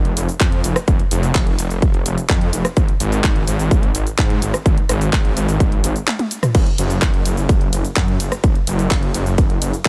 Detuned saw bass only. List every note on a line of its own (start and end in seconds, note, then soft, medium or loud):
0.00 0.13 F1 medium
0.17 0.27 F1 medium
0.41 0.60 F2 loud
0.64 0.74 F1 medium
0.88 0.98 F1 loud
1.11 1.31 F1 medium
1.35 1.55 F1 loud
1.59 1.68 F1 loud
1.70 1.80 F1 medium
1.82 2.02 F1 medium
2.06 2.16 F1 medium
2.29 2.49 F2 loud
2.53 2.63 F1 medium
2.77 2.87 G#1 loud
3.00 3.20 G#1 medium
3.24 3.44 G#1 loud
3.48 3.58 G#1 loud
3.59 3.69 G#1 medium
3.71 3.91 G#1 medium
3.95 4.05 G#1 medium
4.18 4.38 G#2 loud
4.42 4.52 G#1 medium
4.66 4.76 G#1 loud
4.89 5.09 G#1 medium
5.13 5.33 G#1 loud
5.37 5.46 G#1 loud
5.48 5.58 G#1 medium
5.60 5.80 G#1 medium
5.84 5.94 G#1 loud
6.55 6.65 F#1 loud
6.78 6.98 F#1 medium
7.02 7.22 F#1 loud
7.26 7.35 F#1 loud
7.37 7.47 F#1 medium
7.49 7.69 F#1 medium
7.73 7.83 F#1 medium
7.96 8.16 F#2 loud
8.20 8.30 F#1 medium
8.44 8.54 F#1 loud
8.67 8.87 F#1 medium
8.91 9.11 F#1 loud
9.14 9.24 F#1 loud
9.26 9.36 F#1 medium
9.38 9.58 F#1 medium
9.62 9.72 F#1 medium